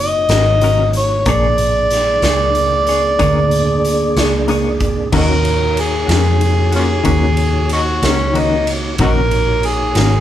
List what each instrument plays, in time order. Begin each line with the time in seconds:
Already playing: fingered electric bass F#1, tonewheel organ A#3 D#4 F#4 C#5
0.00 harmonica D#5
0.29 fingered electric bass G#1, clean electric guitar C#4 F#4 A#4, snare, closed hi-hat
0.61 clean electric guitar D#3 C#4 F#4 A#4, closed hi-hat
0.93 harmonica C#5, closed hi-hat
1.25 fingered electric bass A#1, tonewheel organ A#3 D4 G#4 D5, clean electric guitar A#3 D4 G#4 C#5, harmonica D5, kick, closed hi-hat
1.58 closed hi-hat
1.91 snare, closed hi-hat
2.22 fingered electric bass C#2, clean electric guitar D4 G#4 C#5, snare, closed hi-hat
2.55 closed hi-hat
2.87 clean electric guitar G#4 C#5, closed hi-hat
2.91 clean electric guitar D4
3.19 fingered electric bass D2, clean electric guitar A#3 D4 G#4 C#5, kick, closed hi-hat
3.51 closed hi-hat
3.85 closed hi-hat
4.16 fingered electric bass C#2, clean electric guitar D4 G#4 C#5, snare, closed hi-hat
4.48 clean electric guitar A#3 D4 G#4 C#5, closed hi-hat
4.80 kick, closed hi-hat
5.12 fingered electric bass D#2, clean electric guitar D#3 A#3 C#4 F#4, tonewheel organ A#3 D#4 F#4 C#5, kick, crash
5.17 harmonica D#4 F#4 A#4
5.45 ride
5.77 harmonica G#4, ride
6.07 fingered electric bass F2, clean electric guitar A#3 C#4 F#4, snare, ride
6.41 ride
6.72 clean electric guitar A#3 C#4 F#4, harmonica C#4 F4 G#4, ride
7.03 fingered electric bass D#2, clean electric guitar D#3 A#3 C#4 F#4, kick, ride
7.37 ride
7.69 harmonica C#4 D#4 F#4, ride
8.02 fingered electric bass C#2, clean electric guitar A#3 C#4 F#4, harmonica C#4, snare, ride
8.34 clean electric guitar D#3 A#3 C#4 F#4, ride
8.38 harmonica D#4
8.67 ride
8.97 fingered electric bass A#1, clean electric guitar D#3 A#3, tonewheel organ A#3 D#4 F#4 C#5, kick, ride
9.01 clean electric guitar C#4 F#4, harmonica D#4 F#4 A#4
9.31 ride
9.63 harmonica G#4, ride
9.95 fingered electric bass G#1, clean electric guitar A#3 C#4 F#4, snare, ride